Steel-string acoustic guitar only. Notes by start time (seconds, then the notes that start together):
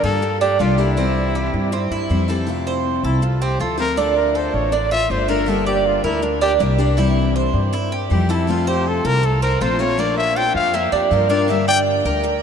Already playing: D3 G3 A#3 D4 G4
0.22 muted steel-string acoustic guitar stroke
0.59 G3 A#3 D4 G4
0.78 G3 A#3 D4 G4
0.97 C3 E3 G3 C4 E4
1.72 muted steel-string acoustic guitar stroke
2.09 E3 G3 C4 E4
2.28 E3 G3 C4 E4
2.47 C3 F3 A3 C4 F4
3.22 muted steel-string acoustic guitar stroke
3.60 F3 A3 C4 F4
3.78 F3 A3 C4 F4
3.96 D3 A3 D4 F4
4.72 muted steel-string acoustic guitar stroke
5.09 D3 A3 D4 F4
5.28 A3 D4 F4
5.46 D3 G3 A#3 D4 G4
6.22 muted steel-string acoustic guitar stroke
6.59 G3 A#3 D4 G4
6.78 G3 A#3 D4 G4
6.97 C3 E3 G3 C4 E4
7.73 muted steel-string acoustic guitar stroke
8.10 E3 G3 C4 E4
8.29 E3 G3 C4 E4
8.47 C3 F3 A3 C4 F4
9.23 muted steel-string acoustic guitar stroke
9.61 F3 A3 C4 F4
9.79 F3 A3 C4 F4
9.98 F3 A#3 D4 F4
10.74 muted steel-string acoustic guitar stroke
11.11 F3 A#3 D4 F4
11.29 A#3 D4 F4
11.48 D3 G3 A#3 D4 G4
12.23 muted steel-string acoustic guitar stroke